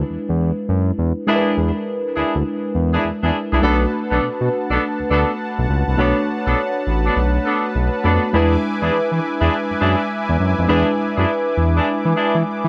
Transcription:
Already playing: fm electric piano G#3 D4 E4 B4
0.10 analog synth bass E2
0.29 analog synth bass E2
0.69 analog synth bass F#2
0.98 analog synth bass E2
1.27 fm electric piano G#3 D4 E4 A#4, horn section D4 E4 G#4
1.36 fm electric piano B4
1.57 analog synth bass E2
2.16 analog synth bass D2, horn section D4 E4 G#4
2.35 analog synth bass D2
2.75 analog synth bass E2
2.93 horn section D4 E4 G#4
3.04 analog synth bass E2
3.23 analog synth bass E2, horn section D4 E4 G#4
3.52 analog synth bass C2, horn section D4 E4 G#4
3.62 analog synth bass B1, fm electric piano A3 D4 F#4 B4, horn section B3 D4 A4, analog synth pad B4 F#5 A5
4.11 analog synth bass B1, horn section B3 D4 A4
4.22 analog synth bass B2
4.41 analog synth bass B2
4.70 analog synth bass B1, horn section B3 D4 A4
4.99 analog synth bass D2
5.10 analog synth bass D2, horn section B3 D4 A4
5.58 analog synth bass B1
5.69 analog synth bass C#2
5.88 analog synth bass C2
5.97 analog synth bass B1, fm electric piano A3 D4 F#4 C#5, horn section B3 D4 A4
6.46 analog synth bass B1, horn section B3 D4 A4
6.87 analog synth bass A1
7.05 horn section B3 D4 A4
7.16 analog synth bass B1
7.45 horn section B3 D4 A4
7.75 analog synth bass B1
8.04 analog synth bass F2, fm electric piano A3 D4 F#4 B4, horn section B3 D4 A4
8.33 analog synth bass E2, fm electric piano G#3 D4 E4 B4, horn section D4 E4 G#4, analog synth pad E5 G#5 D6
8.82 analog synth bass E2, horn section D4 E4 G#4
8.93 analog synth bass E3
9.12 analog synth bass E3
9.40 analog synth bass E2, horn section D4 E4 G#4
9.70 analog synth bass F#2
9.80 analog synth bass F#2, horn section D4 E4 G#4
10.29 analog synth bass E2
10.40 analog synth bass F#2
10.59 analog synth bass F2
10.68 analog synth bass E2, fm electric piano G#3 D4 E4 B4, horn section D4 E4 G#4
11.17 analog synth bass F#2, horn section D4 E4 G#4
11.57 analog synth bass E2
11.76 horn section D4 E4 G#4
12.05 analog synth bass E3
12.16 horn section D4 E4 G#4
12.35 analog synth bass E3
12.64 analog synth bass E3

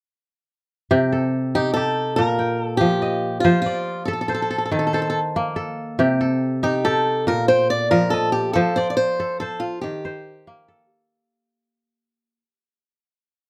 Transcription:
0.91 kora C3 G4
1.12 kora A4
1.55 kora D#4, steel-string acoustic guitar G4
1.74 kora G4, steel-string acoustic guitar A4
2.16 kora A#2, steel-string acoustic guitar A#4
2.39 kora G5
2.63 steel-string acoustic guitar A4
2.77 kora F3, steel-string acoustic guitar G4
3.02 kora D#5
3.40 steel-string acoustic guitar F4
3.44 kora F3 C5
3.62 steel-string acoustic guitar F4
3.66 kora D5
4.05 steel-string acoustic guitar A4, kora A4
4.13 steel-string acoustic guitar A4
4.21 steel-string acoustic guitar A4
4.28 steel-string acoustic guitar A4, kora C5
4.34 steel-string acoustic guitar A4
4.42 steel-string acoustic guitar A4
4.50 steel-string acoustic guitar A4
4.58 steel-string acoustic guitar A4
4.65 steel-string acoustic guitar A4
4.71 kora D#3, steel-string acoustic guitar A4
4.79 steel-string acoustic guitar A4
4.87 steel-string acoustic guitar A4
4.93 steel-string acoustic guitar A4, kora C5
5.02 steel-string acoustic guitar A4
5.10 steel-string acoustic guitar A4
5.36 kora A#3
5.56 kora A4
5.99 kora C3 G4
6.21 kora A4
6.63 kora D#4, steel-string acoustic guitar G4
6.85 kora G4, steel-string acoustic guitar A4
7.27 kora A#2, steel-string acoustic guitar A#4
7.48 steel-string acoustic guitar C5, kora G5
7.70 steel-string acoustic guitar D5
7.91 kora F3, steel-string acoustic guitar A#4
8.10 steel-string acoustic guitar A4, kora D#5
8.32 steel-string acoustic guitar G4
8.53 kora F3 C5, steel-string acoustic guitar A4
8.76 steel-string acoustic guitar C5, kora D5
8.90 steel-string acoustic guitar D5
8.97 steel-string acoustic guitar C5
9.20 kora A4
9.40 steel-string acoustic guitar A4, kora C5
9.60 steel-string acoustic guitar F4
9.81 kora D#3, steel-string acoustic guitar G4
10.05 kora C5
10.47 kora A#3
10.68 kora A4

